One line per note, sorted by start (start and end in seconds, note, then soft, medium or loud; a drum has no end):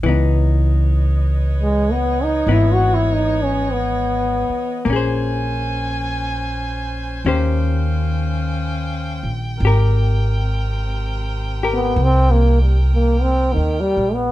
0.03 2.41 C#2 medium
0.03 2.47 E3 soft
0.03 2.48 B3 soft
0.03 4.81 B4 medium
0.03 4.82 C#5 medium
0.03 4.82 D#5 medium
0.08 2.50 D#4 soft
1.62 1.93 G#3 medium
1.92 2.25 B3 medium
2.23 2.54 D#4 medium
2.47 4.44 G#1 medium
2.47 4.85 E3 soft
2.47 4.87 B3 soft
2.51 4.88 D#4 soft
2.51 2.75 E4 medium
2.73 2.96 F#4 medium
2.94 3.15 E4 medium
3.13 3.45 D#4 medium
3.44 3.74 C#4 medium
3.72 4.89 B3 medium
4.49 muted upright bass stroke soft
4.85 7.20 A#1 medium
4.85 7.24 A#3 soft
4.85 7.22 C#4 medium
4.85 9.39 C5 medium
4.85 7.22 G#5 medium
4.90 7.25 C#4 soft
4.90 7.27 G#4 soft
4.96 7.27 C5 medium
7.24 9.20 D#2 medium
7.24 9.62 D#3 soft
7.24 9.39 C#4 medium
7.24 9.62 C#4 medium
7.24 9.63 G4 soft
7.24 9.63 C5 medium
7.24 9.39 F5 medium
7.24 14.32 G5 medium
9.23 9.58 A#1 medium
9.56 11.94 G#1 medium
9.56 14.30 C3 medium
9.56 11.94 A#4 medium
9.65 11.62 G4 soft
9.65 11.63 A#4 medium
11.63 14.32 G4 soft
11.63 14.32 A#4 soft
11.74 12.05 B3 medium
11.96 13.52 C2 medium
11.96 14.32 A#4 medium
12.04 12.33 C4 medium
12.32 12.61 A#3 medium
12.61 12.77 G3 soft
12.94 13.24 A#3 medium
13.22 13.55 C4 medium
13.53 13.93 D#2 medium
13.53 13.82 D#3 medium
13.80 14.15 G3 medium
13.97 14.32 A#1 medium
14.14 14.32 B3 medium